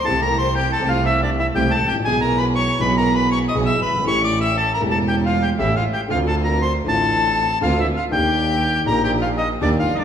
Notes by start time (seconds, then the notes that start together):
0.04 C2 C3 E3 A3 C4 G4 A4 A5
0.22 A#4 A#5
0.38 C5 C6
0.55 G4 G5
0.73 A4 A5
0.79 C2 C3 E3 A3 C4 G4
0.89 F4 F5
1.06 E4 E5
1.23 D4 D5
1.40 E4 E5
1.55 C2 C3 E3 A3 C4 G4 G5
1.71 A4 A5
1.81 A1
1.87 G#1 G4 G5
1.93 A1
1.99 A#1
2.05 B1 B2 E3 G#3 B3 E4 G#4 G#5
2.09 G#4
2.21 A#4 A#5
2.38 B4 B5
2.55 C#5 C#6
2.78 B1 B2 E3 G#3 B3 E4 G#4 B4 B5
2.98 A#4 A#5
3.14 B4 B5
3.31 C#5 C#6
3.48 D#5 D#6
3.54 B1 B2 E3 G#3 B3 E4 G#4
3.65 E5 E6
3.80 G1 B4 B5
3.87 F#1
3.93 G1
3.99 G#1
4.03 A1 A2 E3 A3 C#4 G4
4.07 G4 C#5 C#6
4.24 D5 D6
4.41 E5 E6
4.57 A4 A5
4.74 A#4 A#5
4.79 E1 E2 E3 A3 C#4 G4
4.91 A4 A5
5.08 G4 G5
5.25 F4 F5
5.42 G4 G5
5.58 A1 A2 E3 A3 C#4 E4 G4 E5
5.76 F4 F5
5.93 G4 G5
6.08 D2 D3 A3 C4 D4 F4 F5
6.12 F4
6.27 A4 A5
6.44 A#4 A#5
6.62 C5 C6
6.84 A1 A2 D3 A3 C4 D4 F4 A4
6.88 A5
7.61 D2 D3 A3 C4 D4 F4 F5
7.80 E4 E5
7.97 F4 F5
8.09 D#2 D#3 A#3 D4 G4 G5
8.13 G4
8.84 A#1 A#2 D#3 A#3 D4 G4 A#4 A#5
9.04 G4 G5
9.21 F4 F5
9.38 D#4 D#5
9.61 D#2 D#3 A#3 D4 D#4 G4 D5
9.79 F4 F5
9.86 G1
9.92 F#1 D#4 D#5
9.98 G1 D4 D5